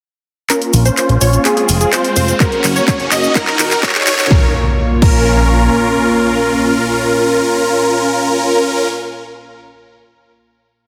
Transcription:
0.50 A#3 C#4 F4 A#4, clap, closed hi-hat, riser, cabasa
0.62 closed hi-hat
0.74 A#1, open hi-hat, cabasa
0.85 C#4 F4 C5, closed hi-hat, cabasa
0.97 C#4 F4 C5, clap, closed hi-hat, cabasa
1.09 A#1, closed hi-hat
1.21 A#1 C#4 F4 C#5, open hi-hat, cabasa
1.33 closed hi-hat, cabasa
1.45 G#3 C4 F4 G#4, clap, closed hi-hat, cabasa
1.57 C4 F4 G#4, closed hi-hat
1.69 F1, open hi-hat, cabasa
1.81 C4 F4 G#4, closed hi-hat, cabasa
1.93 C4 F4 C5, clap, closed hi-hat, cabasa
2.04 closed hi-hat
2.16 F1 C4 F4 C5, open hi-hat, cabasa
2.28 closed hi-hat, cabasa
2.40 A#3 C#4 F#4 A#4, kick, clap, closed hi-hat, cabasa
2.52 closed hi-hat
2.64 F#1, clap, open hi-hat, cabasa
2.76 C#4 F#4 C#5, closed hi-hat, cabasa
2.88 C#4 F#4 C#5, kick, clap, closed hi-hat, cabasa
3.00 F#1, closed hi-hat
3.12 F#1 C#4 F#4 D#5, clap, open hi-hat, cabasa
3.24 closed hi-hat, cabasa
3.35 D#3 D#4 F#4 A#4, kick, clap, closed hi-hat, cabasa
3.47 D#4 F#4 A#4, clap, closed hi-hat
3.59 D#1, clap, open hi-hat, cabasa
3.71 D#4 F#4 A#4, clap, closed hi-hat, cabasa
3.83 D#4 F#4 C#5, kick, clap, closed hi-hat, cabasa
3.89 clap
3.95 clap, closed hi-hat
4.01 clap
4.07 D#1 D#4 F#4 C#5, clap, open hi-hat, cabasa
4.13 clap
4.19 clap, closed hi-hat, cabasa
4.25 clap
4.30 A#1 A#2 A#3 C#4 F4 A#4 C#5, kick, snare, impact
5.02 A#1 C#4 F4 A#4, kick, crash

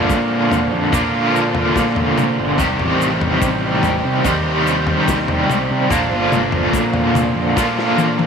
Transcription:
Already playing: G1 A#2 D3 A#3 D4 F4 C5 D5 F5 A#5
0.10 A#2, kick, shaker
0.51 floor tom, shaker
0.73 F2
0.92 A#2 D3 A#3 D4 F4, kick, floor tom, shaker
1.36 shaker
1.55 floor tom
1.76 A#2, kick, snare, shaker
1.96 floor tom
2.18 mid tom, shaker
2.39 G1
2.58 C2 C3 D#3 G3 C4 G4 D#5 G5 C6, kick, floor tom, shaker
2.79 A1, floor tom
3.02 shaker
3.21 floor tom
3.42 A1, kick, shaker
3.83 floor tom, shaker
4.05 C3
4.24 D#2 C3 D#3 G3 C4 G4, kick, floor tom, shaker
4.67 shaker
4.87 floor tom
5.08 kick, snare, shaker
5.28 floor tom
5.49 C2, mid tom, shaker
5.71 C3
5.90 A#1 A#2 D3 A#3 D4 F4 D5 F5 A#5, kick, floor tom, shaker
6.11 G1
6.32 mid tom, shaker
6.52 floor tom
6.74 A#2, kick, shaker
6.94 floor tom
7.15 floor tom, mid tom, shaker
7.35 F2
7.56 A#2 D3 A#3 D4 F4, kick, snare, shaker
7.79 snare
7.98 high tom, shaker
8.19 high tom

